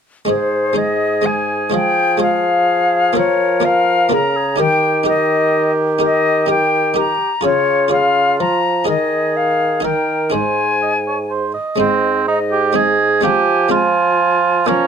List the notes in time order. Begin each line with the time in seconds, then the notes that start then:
0.25 G#2 G#3 D#4 C5
0.29 G#2 G#4 C5
0.73 G#3 D#4 G#4 C5
0.78 D#5
1.22 G#3 D#4 G#4 C5
1.26 G#5
1.70 F3 G#3 F4 G#4 C5
1.74 F3 G5
2.18 G#3 F4 G#4 C5
2.22 F5
3.13 F3 A#3 F4 A#4
3.17 A#4 C#5
3.60 A#3 F4 A#4
3.65 A#4 F5
4.09 C#3 A#3 F4 A#4 A#5
4.13 A#4
4.36 G#4
4.56 D#3 D#4 G4 A#4
4.60 G4 G5
5.04 D#4 G4 A#4
5.08 D#5
5.99 D#4 G4 A#4
6.03 G4 D#5
6.46 D#4 G4 A#4 G5
6.51 G4
6.94 D#4 G4 A#4 A#5
7.41 C#3 F4 G#4 C#5
7.45 C#3 F4 C#5
7.88 F4 G#4 C#5
7.92 F5
8.40 F3 A#5
8.85 D#3 D#4 G#4 A#4
8.89 D#5
9.37 F5
9.80 D#4 A#4 G5
9.85 D#3 A#4
10.30 G#2 D#4 G#4 C5 G#5
10.82 D#5
11.07 C#5
11.30 C5
11.54 D#5
11.76 G#3 C4 D#4 D#5
11.80 G#2
12.28 D#4 D#5
12.51 G4
12.73 G#3 C4 D#4 G#4
12.77 D#5
13.21 F3 G#3 C4 F4 G4 G#5
13.69 G#3 C4 F4
13.73 G#5
14.66 F3 A#3 C#4 F4 A#5